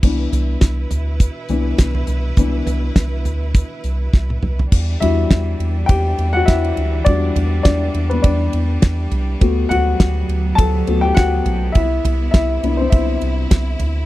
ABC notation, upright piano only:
X:1
M:4/4
L:1/16
Q:"Swing 16ths" 1/4=102
K:Clyd
V:1 name="Upright piano"
z16 | z16 | z2 [Ee]6 [Gg]3 [Ff] [Ee]4 | d4 [Dd]3 [B,B] [Dd]4 z4 |
z2 [Ff]6 [Aa]3 [Gg] [Ff]4 | [Ee]4 [Ee]3 [Cc] [Ee]4 z4 |]
V:2 name="Upright piano"
[E,B,D]8- [E,B,D]2 [E,B,D]2 z4 | [E,B,D]6 z8 z2 | z2 [G,DF]2 z12 | [G,DF]6 z8 z2 |
[A,B,F]8- [A,B,F]2 [A,B,F]2 z4 | z6 [B,DE]2 z8 |]